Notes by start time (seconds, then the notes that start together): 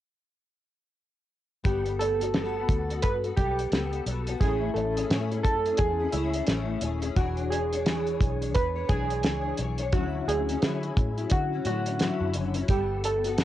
1.64 G1 G3 B3 G4 A4, kick, closed hi-hat
1.85 closed hi-hat
1.99 A4, closed hi-hat
2.20 B3 F#4 A4, closed hi-hat
2.34 G3 B3 F#4 A4, snare, closed hi-hat
2.69 D2, kick, closed hi-hat
2.89 B3 F#4 A4, closed hi-hat
3.02 G2 B4, kick, closed hi-hat
3.23 B3 F#4 A4, closed hi-hat
3.36 B1 G3 B3 G4 A4, kick, closed hi-hat
3.59 closed hi-hat
3.72 C#2 G3 B3 A4, snare, closed hi-hat
3.93 closed hi-hat
4.06 B1 G3 B3 F#4 A4, closed hi-hat
4.27 B3 F#4 A4, closed hi-hat
4.40 A1 A3 C#4 E4 G#4, kick, closed hi-hat
4.74 A1 A4, closed hi-hat
4.96 C#4 E4 G#4, closed hi-hat
5.10 A2 A3 C#4 E4 G#4, snare, closed hi-hat
5.30 C#4 E4 G#4, closed hi-hat
5.43 F#2 A4, kick, closed hi-hat
5.66 C#4 E4 G#4, closed hi-hat
5.77 E2 G#4, kick, closed hi-hat
5.99 C#4 E4 G#4
6.12 C#2 A3 C#4 E4 G#4, closed hi-hat
6.34 closed hi-hat
6.47 A1 A3 C#4 E4 G#4, snare, closed hi-hat
6.81 D#1 A3 C#4 E4 G#4, closed hi-hat
7.02 C#4 E4 G#4, closed hi-hat
7.16 E1 E3 D4 F#4 G#4 C#5, kick, closed hi-hat
7.37 closed hi-hat
7.50 G#4, closed hi-hat
7.72 D4 G#4 C#5, closed hi-hat
7.86 E3 D4 G#4 C#5, snare, closed hi-hat
8.07 closed hi-hat
8.21 B1, kick, closed hi-hat
8.41 D4 G#4 C#5, closed hi-hat
8.54 E2 B4, kick, closed hi-hat
8.76 D4 G#4 C#5
8.89 B1 E3 D4 G#4 C#5, kick, closed hi-hat
9.10 closed hi-hat
9.23 C#2 E3 D4 G#4 C#5, snare, closed hi-hat
9.58 B1 E3 D4 G#4, closed hi-hat
9.62 C#5
9.78 D4 G#4 C#5, closed hi-hat
9.93 D2 D3 F#3 C#4 E4 F#4, kick, closed hi-hat
10.28 D2 G#4, closed hi-hat
10.48 F#3 C#4 E4, closed hi-hat
10.62 D3 F#3 C#4 E4, snare, closed hi-hat
10.83 F#3 C#4 E4, closed hi-hat
10.97 A2, kick, closed hi-hat
11.17 F#3 C#4 E4, closed hi-hat
11.30 D3 F#4, kick, closed hi-hat
11.52 F#3 C#4 E4
11.65 A2 D3 F#3 C#4 E4 F#4, closed hi-hat
11.86 closed hi-hat
11.99 D3 F#3 C#4 E4, snare, closed hi-hat
12.20 F#2
12.34 F#1 D3 F#3 C#4 E4, closed hi-hat
12.54 F#3 C#4 E4, closed hi-hat
12.68 G1 G3 B3 G4 A4, kick, closed hi-hat
13.04 A4, closed hi-hat
13.24 B3 F#4 A4, closed hi-hat
13.38 G3 B3 F#4 A4, snare, closed hi-hat